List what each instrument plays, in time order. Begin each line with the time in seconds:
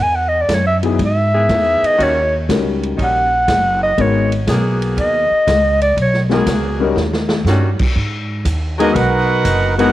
0.00 upright bass E2, clarinet G#5
0.15 clarinet F#5
0.29 clarinet D#5
0.41 clarinet D5
0.49 upright bass F#2, kick, snare, hi-hat pedal, ride
0.54 clarinet C#5
0.67 clarinet E5
0.83 grand piano F#3 B3 D#4 E4 G#4, ride
0.99 upright bass G#2, kick, ride
1.04 clarinet E5
1.34 saxophone section D#3 E3 B3 G#4
1.49 upright bass E2, kick, snare, hi-hat pedal, ride
1.82 muted upright bass stroke, ride
1.86 clarinet D#5
1.97 upright bass D#2, saxophone section D#3 G3 C#4 F#4, kick, ride
2.03 clarinet C#5
2.49 upright bass C#2, grand piano G3 C#4 D#4 F#4 A#4, kick, snare, hi-hat pedal, ride
2.83 ride
2.97 upright bass A#1, saxophone section D#3 G3 C#4 D#4, kick, ride
3.03 clarinet F#5
3.48 upright bass F#1, kick, snare, hi-hat pedal, ride
3.83 clarinet D#5
3.97 upright bass G#1, grand piano G#3 B3 D#4 F#4 A#4, clarinet C#5, kick, ride
4.32 ride
4.47 upright bass B1, saxophone section F#3 A#3 B3 G#4, kick, snare, hi-hat pedal, ride
4.82 ride
4.97 upright bass D#2, clarinet D#5, kick, ride
5.31 muted upright bass stroke
5.47 upright bass C#2, kick, snare, hi-hat pedal, ride
5.81 clarinet D5, ride
5.97 upright bass B1, kick, ride
6.02 clarinet C#5
6.14 snare
6.29 saxophone section F#3 A#3 B3 G#4, grand piano G#3 B3 D#4 F#4 A#4, snare
6.46 upright bass C#2, kick, snare, hi-hat pedal, ride
6.80 grand piano G3 C#4 D#4 F#4 A#4
6.96 upright bass D#2, snare
7.13 snare
7.29 snare
7.45 upright bass G2, saxophone section D#3 G3 C#4 F#4, snare, hi-hat pedal
7.79 muted upright bass stroke, kick, crash
7.96 upright bass G#2, kick
8.45 upright bass D#2, kick, hi-hat pedal, ride
8.78 saxophone section F#3 A#3 B3 G#4, trombone section F#3 B3 D#4, grand piano G#3 B3 D#4 F#4 A#4, trumpet section B3 F#4 A#4 D#5, ride
8.94 upright bass B1, trombone section B3 D#4 F#4, trumpet section D#4 A#4 B4 F#5, kick, ride
9.45 upright bass F#1, kick, hi-hat pedal, ride
9.76 saxophone section F#3 A#3 B3 G#4, grand piano G#3 B3 D#4 F#4 A#4, trombone section B3 D#4 F#4, trumpet section D#4 A#4 B4 F#5, ride